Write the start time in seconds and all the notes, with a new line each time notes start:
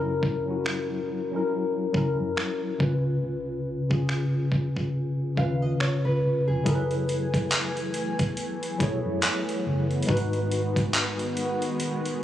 Already playing: F#1 F#3 C#4 E4 A#4
0.23 kick
0.46 F#3 C#4 E4
0.51 F#4
0.66 finger snap
1.32 F#3 C#4 E4
1.36 A#4
1.93 C#2 F#3 C#4 E4, kick
1.97 A#4
2.20 F#2
2.37 finger snap
2.78 C#2 C#3 C#4 F4, kick
2.83 B4
3.24 C#2
3.89 C#3 C#4 F4, kick
3.93 G#4
4.09 finger snap
4.52 kick
4.77 kick
5.36 D#2 C#3 C#4 F4 F5, kick
5.40 B4
5.62 D#5
5.80 C#5, finger snap, muted fingered electric bass stroke
6.05 C#2 B4
6.48 F1 G#4
6.64 F#1 E3 F#3 A3 B3 E4 G#4 A4 G#5, kick, closed hi-hat
6.69 A#4
6.75 B4
6.91 closed hi-hat
7.09 closed hi-hat
7.34 kick, closed hi-hat
7.52 clap, closed hi-hat
7.77 closed hi-hat
7.94 closed hi-hat
8.19 kick, closed hi-hat
8.37 closed hi-hat
8.63 closed hi-hat
8.78 B1 F#3 E4 G#4 A4, kick, closed hi-hat
8.83 C#5
9.06 F#2
9.23 clap, closed hi-hat
9.49 closed hi-hat
9.66 F#1
9.91 closed hi-hat
10.03 G#3, closed hi-hat
10.08 G#1 D#3 G#3 D#4 F#4 B4, kick
10.17 closed hi-hat
10.33 closed hi-hat
10.52 closed hi-hat
10.76 kick, closed hi-hat
10.94 clap, closed hi-hat
11.19 closed hi-hat
11.37 closed hi-hat
11.62 closed hi-hat
11.80 closed hi-hat
12.05 closed hi-hat